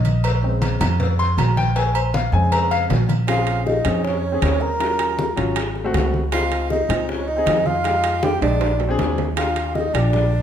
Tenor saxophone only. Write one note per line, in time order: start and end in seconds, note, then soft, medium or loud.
3.28 3.63 F4 medium
3.66 4.06 D#4 medium
4.05 4.63 C#4 medium
4.62 5.38 A#4 medium
6.33 6.68 F4 medium
6.71 7.11 D#4 medium
7.10 7.30 C#4 medium
7.28 7.68 D#4 medium
7.66 8.25 F4 medium
8.23 8.42 G4 medium
8.42 8.95 D4 medium
9.37 9.76 F4 medium
9.74 9.95 D#4 medium
9.94 10.42 D4 medium